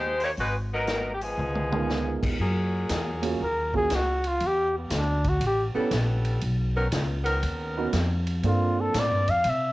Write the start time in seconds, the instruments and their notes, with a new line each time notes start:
Already playing: upright bass D#2, saxophone section G#3 D#4 G4 C5
0.20 saxophone section A#3 C#5, open hi-hat
0.24 saxophone section D#4 G4
0.37 upright bass G#1, saxophone section G#3 D#4 F#4 B4, open hi-hat
0.73 saxophone section F#3 B3 D#4 A#4
0.87 snare, closed hi-hat
1.14 saxophone section G4
1.21 saxophone section F3 B3 D#4 G#4, open hi-hat
1.38 upright bass C#2, mid tom
1.55 mid tom
1.71 grand piano G#3 B3 D#4 F4 A#4, mid tom
1.90 snare
2.23 upright bass D#2, kick, crash
2.39 upright bass F#2, saxophone section F#3 A#3 F4 G#4
2.89 upright bass E2, snare, hi-hat pedal, ride
3.22 grand piano A#3 C#4 F4 F#4 G#4, ride
3.40 upright bass D#2, trumpet A#4
3.73 grand piano A#3 C#4 F4 F#4 G#4, trumpet G#4, kick
3.90 upright bass C#2, snare, hi-hat pedal, ride
3.95 trumpet F#4
4.24 trumpet F4, ride
4.40 upright bass E2, ride
4.47 trumpet G4
4.78 trumpet B3
4.90 upright bass D2, snare, hi-hat pedal, ride
4.97 trumpet D4
5.24 kick, ride
5.29 trumpet F#4
5.40 upright bass A1, ride
5.46 trumpet G4
5.74 saxophone section G3 B3 C#4 A4, grand piano B3 C#4 E4 G4 A4, muted upright bass stroke
5.91 upright bass A#1, snare, hi-hat pedal, ride
6.25 ride
6.41 upright bass B1, ride
6.75 saxophone section D#3 B3 C#4 A#4
6.92 upright bass C#2, snare, hi-hat pedal, ride
7.24 saxophone section D#3 B3 C#4 A#4, ride
7.43 upright bass D#2, ride
7.77 grand piano B3 C#4 D#4 F#4 A#4
7.93 upright bass F2, snare, hi-hat pedal, ride
8.27 ride
8.43 upright bass G2, grand piano A#3 C4 D4 F4 A4, ride
8.47 trumpet F4
8.81 trumpet A4
8.94 upright bass A2, snare, hi-hat pedal, ride
9.00 trumpet D5
9.10 upright bass G2
9.27 upright bass F2, trumpet F5, ride
9.44 upright bass C3, ride
9.49 trumpet E5